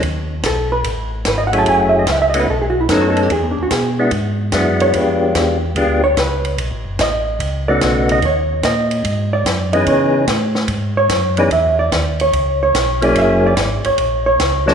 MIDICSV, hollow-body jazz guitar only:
0, 0, Header, 1, 2, 480
1, 0, Start_track
1, 0, Tempo, 410397
1, 41, Time_signature, 4, 2, 24, 8
1, 17242, End_track
2, 0, Start_track
2, 0, Title_t, "Hollow-body jazz guitar"
2, 0, Program_c, 0, 26
2, 540, Note_on_c, 0, 69, 78
2, 843, Note_on_c, 0, 71, 78
2, 844, Note_off_c, 0, 69, 0
2, 937, Note_off_c, 0, 71, 0
2, 1498, Note_on_c, 0, 71, 80
2, 1613, Note_on_c, 0, 75, 94
2, 1645, Note_off_c, 0, 71, 0
2, 1715, Note_off_c, 0, 75, 0
2, 1720, Note_on_c, 0, 78, 95
2, 1835, Note_off_c, 0, 78, 0
2, 1854, Note_on_c, 0, 81, 92
2, 1942, Note_off_c, 0, 81, 0
2, 1971, Note_on_c, 0, 80, 86
2, 2100, Note_off_c, 0, 80, 0
2, 2100, Note_on_c, 0, 78, 81
2, 2208, Note_off_c, 0, 78, 0
2, 2212, Note_on_c, 0, 76, 93
2, 2321, Note_off_c, 0, 76, 0
2, 2329, Note_on_c, 0, 75, 76
2, 2449, Note_off_c, 0, 75, 0
2, 2449, Note_on_c, 0, 76, 82
2, 2528, Note_off_c, 0, 76, 0
2, 2528, Note_on_c, 0, 78, 94
2, 2586, Note_off_c, 0, 78, 0
2, 2593, Note_on_c, 0, 76, 89
2, 2681, Note_off_c, 0, 76, 0
2, 2685, Note_on_c, 0, 75, 85
2, 2797, Note_off_c, 0, 75, 0
2, 2804, Note_on_c, 0, 71, 78
2, 2896, Note_off_c, 0, 71, 0
2, 2928, Note_on_c, 0, 69, 90
2, 3054, Note_off_c, 0, 69, 0
2, 3058, Note_on_c, 0, 68, 77
2, 3152, Note_off_c, 0, 68, 0
2, 3156, Note_on_c, 0, 66, 83
2, 3272, Note_off_c, 0, 66, 0
2, 3280, Note_on_c, 0, 64, 69
2, 3373, Note_off_c, 0, 64, 0
2, 3399, Note_on_c, 0, 63, 80
2, 3526, Note_on_c, 0, 66, 74
2, 3553, Note_off_c, 0, 63, 0
2, 3623, Note_off_c, 0, 66, 0
2, 3628, Note_on_c, 0, 69, 88
2, 3775, Note_off_c, 0, 69, 0
2, 3775, Note_on_c, 0, 67, 70
2, 3860, Note_off_c, 0, 67, 0
2, 3883, Note_on_c, 0, 68, 86
2, 4009, Note_on_c, 0, 59, 47
2, 4035, Note_off_c, 0, 68, 0
2, 4106, Note_on_c, 0, 62, 81
2, 4178, Note_off_c, 0, 59, 0
2, 4225, Note_off_c, 0, 62, 0
2, 4241, Note_on_c, 0, 66, 76
2, 4332, Note_off_c, 0, 66, 0
2, 4348, Note_on_c, 0, 68, 87
2, 4542, Note_off_c, 0, 68, 0
2, 5633, Note_on_c, 0, 73, 97
2, 5795, Note_off_c, 0, 73, 0
2, 5795, Note_on_c, 0, 71, 79
2, 6270, Note_off_c, 0, 71, 0
2, 7061, Note_on_c, 0, 73, 97
2, 7216, Note_off_c, 0, 73, 0
2, 7238, Note_on_c, 0, 71, 88
2, 7677, Note_off_c, 0, 71, 0
2, 8199, Note_on_c, 0, 75, 81
2, 8946, Note_off_c, 0, 75, 0
2, 8986, Note_on_c, 0, 74, 84
2, 9431, Note_off_c, 0, 74, 0
2, 9495, Note_on_c, 0, 75, 105
2, 9631, Note_off_c, 0, 75, 0
2, 9654, Note_on_c, 0, 73, 80
2, 10116, Note_on_c, 0, 75, 91
2, 10393, Note_off_c, 0, 73, 0
2, 10864, Note_off_c, 0, 75, 0
2, 10915, Note_on_c, 0, 74, 83
2, 11355, Note_off_c, 0, 74, 0
2, 11382, Note_on_c, 0, 75, 100
2, 11534, Note_off_c, 0, 75, 0
2, 11555, Note_on_c, 0, 73, 74
2, 12304, Note_off_c, 0, 73, 0
2, 12834, Note_on_c, 0, 73, 91
2, 13276, Note_off_c, 0, 73, 0
2, 13323, Note_on_c, 0, 74, 94
2, 13466, Note_off_c, 0, 74, 0
2, 13480, Note_on_c, 0, 76, 96
2, 13785, Note_off_c, 0, 76, 0
2, 13791, Note_on_c, 0, 74, 93
2, 14236, Note_off_c, 0, 74, 0
2, 14285, Note_on_c, 0, 73, 95
2, 14755, Note_off_c, 0, 73, 0
2, 14769, Note_on_c, 0, 73, 94
2, 15207, Note_off_c, 0, 73, 0
2, 15256, Note_on_c, 0, 74, 92
2, 15420, Note_off_c, 0, 74, 0
2, 15420, Note_on_c, 0, 76, 90
2, 15719, Note_off_c, 0, 76, 0
2, 15748, Note_on_c, 0, 74, 104
2, 16179, Note_off_c, 0, 74, 0
2, 16208, Note_on_c, 0, 73, 87
2, 16668, Note_off_c, 0, 73, 0
2, 16682, Note_on_c, 0, 73, 94
2, 17128, Note_off_c, 0, 73, 0
2, 17166, Note_on_c, 0, 74, 93
2, 17242, Note_off_c, 0, 74, 0
2, 17242, End_track
0, 0, End_of_file